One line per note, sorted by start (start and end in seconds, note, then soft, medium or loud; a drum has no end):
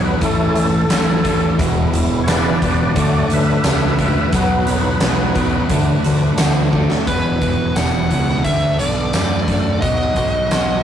0.00 0.14 B1 medium
0.00 0.18 B2 medium
0.00 0.18 F#3 medium
0.00 0.18 B3 medium
0.00 0.23 B3 soft
0.00 0.18 D#4 medium
0.00 0.23 D#4 soft
0.00 0.22 F#4 medium
0.04 0.21 B4 medium
0.20 0.48 A1 medium
0.20 0.83 A2 medium
0.20 0.56 A2 medium
0.20 0.83 E3 medium
0.20 0.57 E3 medium
0.20 0.67 A3 soft
0.20 0.57 A3 medium
0.20 0.67 C#4 soft
0.20 0.57 C#4 medium
0.20 0.67 E4 medium
0.20 0.54 A4 medium
0.20 kick medium
0.20 closed hi-hat medium
0.24 0.55 E4 medium
0.51 0.55 G#4 medium
0.55 0.83 A1 medium
0.55 0.91 C#4 medium
0.55 0.91 E4 medium
0.55 1.56 A4 loud
0.55 closed hi-hat medium
0.59 0.90 A3 soft
0.88 1.61 A1 medium
0.88 1.20 A2 medium
0.88 1.25 E3 medium
0.88 1.21 F#3 medium
0.88 1.25 A3 medium
0.88 snare loud
0.88 closed hi-hat loud
0.88 tambourine loud
0.93 1.26 C#4 medium
0.93 1.24 E4 medium
1.22 1.55 A2 medium
1.22 1.55 E3 medium
1.22 1.60 E4 medium
1.22 kick medium
1.22 closed hi-hat medium
1.28 1.60 A3 soft
1.28 1.60 C#4 soft
1.56 1.85 E1 medium
1.56 2.20 E2 medium
1.56 1.94 E2 medium
1.56 2.20 B2 medium
1.56 1.94 B2 loud
1.56 1.94 E3 medium
1.56 2.57 G#3 medium
1.56 2.57 B3 medium
1.56 2.58 E4 medium
1.56 kick loud
1.56 closed hi-hat medium
1.60 1.94 G#3 loud
1.60 1.93 B3 medium
1.60 1.93 E4 loud
1.93 2.19 E1 medium
1.93 2.26 E3 medium
1.93 2.28 G#3 medium
1.93 2.28 B3 medium
1.93 2.28 E4 medium
1.93 closed hi-hat medium
2.23 2.53 E1 medium
2.23 2.58 E2 medium
2.23 2.62 E3 medium
2.23 2.59 B4 loud
2.23 2.28 C#5 medium
2.28 2.59 C#3 medium
2.28 2.63 G#3 medium
2.28 2.62 B3 medium
2.28 2.61 E4 medium
2.28 2.61 D5 loud
2.28 snare loud
2.28 closed hi-hat loud
2.28 tambourine loud
2.60 2.88 E1 loud
2.60 2.93 E2 medium
2.60 2.93 B2 medium
2.60 2.96 G#3 soft
2.60 2.97 B3 soft
2.60 2.97 E4 soft
2.60 2.93 B4 medium
2.60 2.96 D5 loud
2.60 kick medium
2.60 closed hi-hat medium
2.66 2.96 E3 soft
2.94 3.22 D2 loud
2.94 3.58 D3 medium
2.94 3.31 D3 medium
2.94 3.94 F#3 soft
2.94 3.95 A3 soft
2.94 3.58 A3 medium
2.94 3.31 A3 medium
2.94 3.95 D4 medium
2.94 3.30 D4 medium
2.94 3.28 F#4 medium
2.94 3.30 D5 medium
2.94 kick medium
2.94 closed hi-hat medium
2.98 3.28 F#4 medium
3.29 3.57 D2 medium
3.29 3.65 A3 soft
3.29 3.65 D4 medium
3.29 3.64 F#4 medium
3.29 3.64 B4 medium
3.29 closed hi-hat medium
3.34 3.66 E5 loud
3.64 4.16 C#2 medium
3.64 3.96 D3 medium
3.64 4.00 A3 medium
3.64 3.96 B3 medium
3.64 4.00 D4 medium
3.64 3.97 F#4 medium
3.64 3.98 B4 medium
3.64 3.99 E5 medium
3.64 snare loud
3.64 closed hi-hat medium
3.64 tambourine loud
3.99 4.30 D3 medium
3.99 4.30 A3 medium
3.99 4.34 A3 soft
3.99 4.34 D4 medium
3.99 4.33 F#4 medium
3.99 4.32 B4 medium
3.99 4.34 E5 loud
3.99 kick medium
3.99 closed hi-hat medium
4.33 4.59 B1 medium
4.33 4.95 B2 medium
4.33 4.68 B2 medium
4.33 4.68 F#3 medium
4.33 4.95 F#3 medium
4.33 5.67 F#3 medium
4.33 5.67 B3 medium
4.33 4.68 B3 medium
4.33 5.68 D#4 medium
4.33 4.67 D#4 medium
4.33 4.65 F#4 medium
4.33 6.36 B4 loud
4.33 kick loud
4.33 closed hi-hat loud
4.66 4.93 B1 medium
4.66 5.01 B3 soft
4.66 5.02 D#4 soft
4.66 5.02 F#4 medium
4.66 snare soft
4.66 closed hi-hat medium
5.00 5.28 B1 loud
5.00 5.32 B2 medium
5.00 5.36 F#3 medium
5.00 5.33 G#3 medium
5.00 5.37 B3 medium
5.00 5.36 D#4 medium
5.00 snare loud
5.00 closed hi-hat medium
5.00 tambourine loud
5.05 5.35 F#4 medium
5.34 5.62 B1 loud
5.34 5.66 B2 medium
5.34 5.67 F#3 medium
5.34 5.71 D#4 medium
5.34 5.70 F#4 medium
5.34 kick medium
5.34 closed hi-hat medium
5.39 5.70 B3 soft
5.68 5.96 D2 medium
5.68 6.32 D3 medium
5.68 6.05 D3 medium
5.68 7.03 F#3 medium
5.68 7.03 A3 medium
5.68 6.32 A3 loud
5.68 6.05 A3 loud
5.68 7.04 D4 medium
5.68 6.05 D4 medium
5.68 kick medium
5.68 closed hi-hat medium
5.72 6.04 F#4 loud
6.04 6.31 D2 medium
6.04 6.38 A3 medium
6.04 6.39 D4 medium
6.04 6.39 F#4 medium
6.04 closed hi-hat medium
6.37 6.90 D2 medium
6.37 6.69 D3 medium
6.37 6.73 D3 medium
6.37 6.74 A3 medium
6.37 6.70 B3 medium
6.37 6.73 D4 medium
6.37 6.71 F#4 medium
6.37 snare loud
6.37 closed hi-hat loud
6.37 tambourine loud
6.72 7.04 D3 medium
6.72 7.04 A3 medium
6.72 7.08 A3 medium
6.72 7.08 D4 medium
6.72 7.07 F#4 medium
6.72 kick medium
6.90 snare medium
7.05 7.39 E1 medium
7.05 7.38 E2 medium
7.05 7.42 E2 medium
7.05 7.38 B2 medium
7.05 7.42 B2 medium
7.05 7.42 E3 medium
7.05 7.42 G#3 medium
7.05 7.41 B3 medium
7.05 8.44 E4 medium
7.05 8.44 G#4 medium
7.05 7.40 G#4 medium
7.05 8.44 B4 medium
7.05 7.79 B4 medium
7.05 kick medium
7.05 closed hi-hat medium
7.41 7.74 E1 medium
7.41 7.72 E2 medium
7.41 7.73 B2 medium
7.41 7.76 E3 soft
7.41 7.76 G#3 soft
7.41 7.76 B3 medium
7.41 7.76 G#4 soft
7.41 kick medium
7.41 closed hi-hat medium
7.75 8.08 E1 medium
7.75 8.07 E2 medium
7.75 8.11 E2 medium
7.75 8.07 B2 medium
7.75 8.11 B2 medium
7.75 8.11 E3 medium
7.75 8.11 G#3 medium
7.75 8.10 B3 medium
7.75 8.09 G#4 medium
7.75 8.41 F#5 loud
7.75 snare loud
7.75 closed hi-hat medium
7.75 tambourine loud
8.10 8.43 C#2 medium
8.10 8.42 E2 medium
8.10 8.42 B2 medium
8.10 8.44 E3 soft
8.10 8.45 G#3 soft
8.10 8.46 B3 soft
8.10 8.45 G#4 soft
8.10 closed hi-hat medium
8.28 snare soft
8.44 8.77 D2 medium
8.44 8.79 D3 medium
8.44 8.76 D3 medium
8.44 8.77 A3 medium
8.44 8.80 A3 medium
8.44 8.80 D4 medium
8.44 8.68 D#4 soft
8.44 8.78 F#4 medium
8.44 8.68 G4 medium
8.44 8.68 A#4 medium
8.44 8.79 E5 loud
8.44 kick medium
8.44 closed hi-hat medium
8.67 9.81 D4 medium
8.67 9.81 F#4 medium
8.67 9.82 A4 medium
8.79 9.11 B1 medium
8.79 9.11 D3 medium
8.79 9.13 A3 soft
8.79 9.11 B3 medium
8.79 9.13 D4 soft
8.79 9.14 F#4 soft
8.79 9.80 D5 medium
8.79 closed hi-hat medium
9.13 9.45 F#2 medium
9.13 9.45 D3 medium
9.13 9.48 D3 medium
9.13 9.45 A3 medium
9.13 9.48 A3 medium
9.13 9.48 D4 medium
9.13 9.47 F#4 medium
9.13 snare loud
9.13 closed hi-hat medium
9.13 tambourine loud
9.48 9.80 F#2 medium
9.48 9.79 D3 medium
9.48 9.80 A3 medium
9.48 9.83 A3 soft
9.48 9.84 D4 soft
9.48 9.83 F#4 medium
9.48 kick medium
9.48 closed hi-hat medium
9.81 10.14 B1 medium
9.81 10.17 B2 medium
9.81 10.14 B2 medium
9.81 10.17 F#3 medium
9.81 10.14 F#3 medium
9.81 10.17 B3 medium
9.81 10.83 D#4 medium
9.81 10.16 D#4 medium
9.81 10.83 F#4 medium
9.81 10.14 F#4 medium
9.81 10.83 B4 medium
9.81 10.83 D#5 medium
9.81 kick loud
9.81 closed hi-hat medium
10.00 snare soft
10.15 10.48 B1 medium
10.15 10.48 B2 medium
10.15 10.49 F#3 medium
10.15 10.50 B3 soft
10.15 10.51 D#4 soft
10.15 10.51 F#4 soft
10.15 kick medium
10.15 closed hi-hat medium
10.51 10.83 B1 medium
10.51 10.83 B2 medium
10.51 10.83 F#3 medium
10.51 10.83 B3 medium
10.51 10.83 D#4 medium
10.51 10.83 F#4 medium
10.51 snare loud
10.51 closed hi-hat medium
10.51 tambourine loud